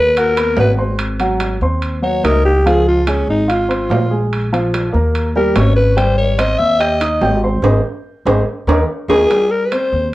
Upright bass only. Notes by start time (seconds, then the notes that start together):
Already playing: D#2
0.57 G#1
1.61 D#2
2.24 C#2
3.27 G#1
3.90 A#1
4.94 D#2
5.56 G#1
6.59 D#2
7.21 G#1
7.62 G#1
8.25 G#1
8.67 D#2
9.08 D#2
9.92 D#2